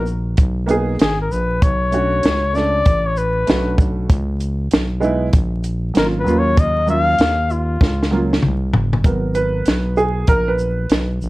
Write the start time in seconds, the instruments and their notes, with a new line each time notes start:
Already playing: fm bass A#1
0.06 shaker
0.37 fm bass B1, kick, closed hi-hat
0.66 upright piano A#3 B3 D#4, closed hi-hat, shaker
0.71 upright piano G#4
0.99 fm bass G#1, muted trumpet G#4, snare, closed hi-hat
1.21 muted trumpet A#4
1.31 fm bass A#1, muted trumpet B4, shaker
1.62 fm bass B1, muted trumpet C#5, kick, closed hi-hat
1.91 upright piano A3 C#4 D4 F#4, closed hi-hat, shaker
2.23 fm bass C#2, snare, closed hi-hat
2.53 upright piano A3 C#4 D4 A4, muted trumpet D5, snare, shaker
2.85 fm bass A1, kick, closed hi-hat
3.06 muted trumpet C#5
3.17 muted trumpet B4, shaker
3.47 fm bass B1, upright piano A3 C#4 D4 F#4, snare, closed hi-hat
3.78 fm bass B1, kick, shaker
4.10 fm bass C#2, kick, closed hi-hat
4.40 closed hi-hat, shaker
4.71 fm bass B1, snare, closed hi-hat
5.00 upright piano G#3 B3 D#4 E4, shaker
5.33 fm bass A#1, kick, closed hi-hat
5.64 closed hi-hat, shaker
5.94 fm bass G#1, upright piano F#3 A#3 C#4 D#4, muted trumpet A#4, snare, closed hi-hat
6.04 upright piano F4
6.19 muted trumpet B4
6.24 fm bass D#2, upright piano F#3 A#3 C#4 F4, shaker
6.39 muted trumpet C#5
6.57 muted trumpet D#5, kick, closed hi-hat
6.86 upright piano F#3 A#3 C#4 F4, muted trumpet F5, shaker
7.19 fm bass D#2, snare, closed hi-hat
7.50 muted trumpet F4, shaker
7.81 fm bass C#2, kick, snare
8.03 snare
8.11 upright piano F#3 A#3 C#4 F4
8.33 snare
8.42 fm bass C2, mid tom
8.73 fm bass F#1, floor tom
8.93 floor tom
9.04 fm bass G#1, upright piano F#3 B3 A#4, kick, closed hi-hat
9.35 upright piano B4, closed hi-hat, shaker
9.66 fm bass B1, snare, closed hi-hat
9.97 upright piano G#4, shaker
10.27 fm bass A#1, upright piano A#4, kick, closed hi-hat
10.48 upright piano B4
10.59 shaker
10.90 fm bass B1, snare, closed hi-hat
11.21 fm bass A#1, shaker